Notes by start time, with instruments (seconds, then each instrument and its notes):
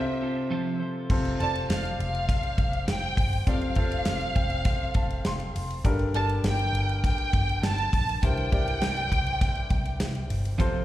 Already playing: grand piano C3 C4 F4 A4 C5, clean electric guitar C4 F4 A4 C5, violin section E5
0.21 clean electric guitar F4 A4 C5
0.50 clean electric guitar F3 C4 F4 A4 C5
0.80 clean electric guitar F4 A4 C5
1.10 picked electric bass F1, grand piano C3 C4 F4 A4 C5, kick, crash
1.25 ride
1.40 picked electric bass F1, grand piano C4 F4 A4 D5, violin section A5, ride
1.55 ride
1.70 picked electric bass F1, violin section F5, snare, ride
1.85 ride
1.99 picked electric bass F1, violin section F5, ride
2.15 ride
2.29 kick, snare, ride
2.43 ride
2.58 picked electric bass F1, kick, ride
2.73 ride
2.87 picked electric bass F1, violin section G5, snare, ride
3.17 picked electric bass G1, kick, open hi-hat, ride
3.33 ride
3.47 picked electric bass F1, grand piano C3 C4 F4 A4 D5, violin section F5, kick, hi-hat pedal, ride
3.61 ride
3.75 picked electric bass F1, grand piano C4 F4 A4 C5, kick, ride
3.92 ride
4.05 picked electric bass F1, snare, ride
4.21 ride
4.36 picked electric bass F1, grand piano G5, kick, ride
4.50 ride
4.65 grand piano F5, kick, snare, ride
4.94 picked electric bass F1, grand piano A5, kick, ride
5.10 ride
5.25 picked electric bass F1, grand piano C6, snare, ride
5.40 ride
5.56 picked electric bass F1, open hi-hat, ride
5.70 ride
5.84 picked electric bass G1, grand piano G2 D3 D4 G4 A4 A#4, kick, hi-hat pedal, ride
5.99 ride
6.14 picked electric bass G1, grand piano D4 G4 A4 A#4, violin section A5, ride
6.29 ride
6.43 picked electric bass G1, violin section G5, snare, ride
6.59 ride
6.73 picked electric bass G1, ride
6.89 ride
7.04 violin section G5, kick, snare, ride
7.18 ride
7.33 picked electric bass G1, kick, ride
7.49 ride
7.62 picked electric bass G1, violin section A5, snare, ride
7.78 ride
7.93 picked electric bass A#1, kick, open hi-hat, ride
8.09 ride
8.23 picked electric bass C2, grand piano G2 E4 G4 A#4 C5, violin section G5, kick, hi-hat pedal, ride
8.37 ride
8.52 picked electric bass C2, grand piano E4 G4 A#4 D5, kick, ride
8.68 ride
8.81 picked electric bass C2, snare, ride
8.97 ride
9.12 picked electric bass C2, kick, ride
9.26 ride
9.41 kick, snare, ride
9.55 ride
9.70 picked electric bass C2, kick, ride
9.85 ride
10.00 picked electric bass C2, snare, ride
10.15 ride
10.30 picked electric bass G1, open hi-hat, ride
10.45 ride
10.58 picked electric bass F1, grand piano C3 C4 F4 A4 C5, clean electric guitar F3 C4 F4 A4 C5, kick, hi-hat pedal, ride